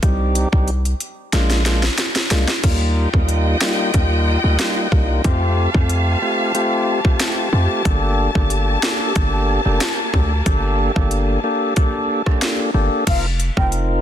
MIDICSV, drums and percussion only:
0, 0, Header, 1, 2, 480
1, 0, Start_track
1, 0, Tempo, 652174
1, 20, Time_signature, 4, 2, 24, 8
1, 10314, End_track
2, 0, Start_track
2, 0, Title_t, "Drums"
2, 19, Note_on_c, 9, 42, 79
2, 20, Note_on_c, 9, 36, 108
2, 93, Note_off_c, 9, 42, 0
2, 94, Note_off_c, 9, 36, 0
2, 260, Note_on_c, 9, 42, 80
2, 333, Note_off_c, 9, 42, 0
2, 388, Note_on_c, 9, 36, 90
2, 461, Note_off_c, 9, 36, 0
2, 497, Note_on_c, 9, 42, 63
2, 571, Note_off_c, 9, 42, 0
2, 628, Note_on_c, 9, 42, 54
2, 702, Note_off_c, 9, 42, 0
2, 739, Note_on_c, 9, 42, 75
2, 813, Note_off_c, 9, 42, 0
2, 978, Note_on_c, 9, 42, 64
2, 980, Note_on_c, 9, 38, 55
2, 1052, Note_off_c, 9, 42, 0
2, 1053, Note_off_c, 9, 38, 0
2, 1106, Note_on_c, 9, 38, 51
2, 1108, Note_on_c, 9, 42, 49
2, 1180, Note_off_c, 9, 38, 0
2, 1181, Note_off_c, 9, 42, 0
2, 1219, Note_on_c, 9, 38, 69
2, 1220, Note_on_c, 9, 42, 76
2, 1293, Note_off_c, 9, 38, 0
2, 1294, Note_off_c, 9, 42, 0
2, 1347, Note_on_c, 9, 38, 67
2, 1420, Note_off_c, 9, 38, 0
2, 1459, Note_on_c, 9, 38, 85
2, 1459, Note_on_c, 9, 42, 75
2, 1532, Note_off_c, 9, 38, 0
2, 1533, Note_off_c, 9, 42, 0
2, 1587, Note_on_c, 9, 38, 78
2, 1587, Note_on_c, 9, 42, 57
2, 1660, Note_off_c, 9, 38, 0
2, 1660, Note_off_c, 9, 42, 0
2, 1699, Note_on_c, 9, 38, 92
2, 1699, Note_on_c, 9, 42, 67
2, 1773, Note_off_c, 9, 38, 0
2, 1773, Note_off_c, 9, 42, 0
2, 1827, Note_on_c, 9, 38, 87
2, 1900, Note_off_c, 9, 38, 0
2, 1940, Note_on_c, 9, 36, 110
2, 1940, Note_on_c, 9, 42, 79
2, 1940, Note_on_c, 9, 49, 94
2, 2013, Note_off_c, 9, 42, 0
2, 2013, Note_off_c, 9, 49, 0
2, 2014, Note_off_c, 9, 36, 0
2, 2308, Note_on_c, 9, 36, 89
2, 2382, Note_off_c, 9, 36, 0
2, 2418, Note_on_c, 9, 42, 63
2, 2491, Note_off_c, 9, 42, 0
2, 2659, Note_on_c, 9, 38, 112
2, 2732, Note_off_c, 9, 38, 0
2, 2898, Note_on_c, 9, 42, 66
2, 2901, Note_on_c, 9, 36, 94
2, 2972, Note_off_c, 9, 42, 0
2, 2975, Note_off_c, 9, 36, 0
2, 3380, Note_on_c, 9, 42, 75
2, 3381, Note_on_c, 9, 38, 100
2, 3454, Note_off_c, 9, 38, 0
2, 3454, Note_off_c, 9, 42, 0
2, 3621, Note_on_c, 9, 36, 86
2, 3695, Note_off_c, 9, 36, 0
2, 3859, Note_on_c, 9, 42, 80
2, 3860, Note_on_c, 9, 36, 106
2, 3933, Note_off_c, 9, 42, 0
2, 3934, Note_off_c, 9, 36, 0
2, 4228, Note_on_c, 9, 36, 89
2, 4302, Note_off_c, 9, 36, 0
2, 4338, Note_on_c, 9, 42, 65
2, 4412, Note_off_c, 9, 42, 0
2, 4818, Note_on_c, 9, 42, 67
2, 4892, Note_off_c, 9, 42, 0
2, 5187, Note_on_c, 9, 36, 93
2, 5260, Note_off_c, 9, 36, 0
2, 5300, Note_on_c, 9, 42, 74
2, 5301, Note_on_c, 9, 38, 96
2, 5373, Note_off_c, 9, 42, 0
2, 5374, Note_off_c, 9, 38, 0
2, 5780, Note_on_c, 9, 36, 109
2, 5780, Note_on_c, 9, 42, 84
2, 5853, Note_off_c, 9, 42, 0
2, 5854, Note_off_c, 9, 36, 0
2, 6148, Note_on_c, 9, 36, 92
2, 6221, Note_off_c, 9, 36, 0
2, 6258, Note_on_c, 9, 42, 67
2, 6331, Note_off_c, 9, 42, 0
2, 6499, Note_on_c, 9, 38, 114
2, 6572, Note_off_c, 9, 38, 0
2, 6738, Note_on_c, 9, 42, 66
2, 6741, Note_on_c, 9, 36, 100
2, 6812, Note_off_c, 9, 42, 0
2, 6814, Note_off_c, 9, 36, 0
2, 7220, Note_on_c, 9, 42, 77
2, 7221, Note_on_c, 9, 38, 98
2, 7293, Note_off_c, 9, 42, 0
2, 7294, Note_off_c, 9, 38, 0
2, 7460, Note_on_c, 9, 36, 86
2, 7534, Note_off_c, 9, 36, 0
2, 7699, Note_on_c, 9, 42, 82
2, 7700, Note_on_c, 9, 36, 108
2, 7772, Note_off_c, 9, 42, 0
2, 7773, Note_off_c, 9, 36, 0
2, 8067, Note_on_c, 9, 36, 91
2, 8141, Note_off_c, 9, 36, 0
2, 8177, Note_on_c, 9, 42, 66
2, 8250, Note_off_c, 9, 42, 0
2, 8657, Note_on_c, 9, 42, 66
2, 8661, Note_on_c, 9, 36, 98
2, 8731, Note_off_c, 9, 42, 0
2, 8734, Note_off_c, 9, 36, 0
2, 9026, Note_on_c, 9, 36, 96
2, 9026, Note_on_c, 9, 37, 92
2, 9100, Note_off_c, 9, 36, 0
2, 9100, Note_off_c, 9, 37, 0
2, 9139, Note_on_c, 9, 42, 78
2, 9140, Note_on_c, 9, 38, 101
2, 9213, Note_off_c, 9, 42, 0
2, 9214, Note_off_c, 9, 38, 0
2, 9619, Note_on_c, 9, 42, 84
2, 9620, Note_on_c, 9, 36, 113
2, 9620, Note_on_c, 9, 49, 101
2, 9693, Note_off_c, 9, 42, 0
2, 9693, Note_off_c, 9, 49, 0
2, 9694, Note_off_c, 9, 36, 0
2, 9859, Note_on_c, 9, 42, 63
2, 9933, Note_off_c, 9, 42, 0
2, 9988, Note_on_c, 9, 36, 97
2, 10062, Note_off_c, 9, 36, 0
2, 10098, Note_on_c, 9, 42, 62
2, 10172, Note_off_c, 9, 42, 0
2, 10314, End_track
0, 0, End_of_file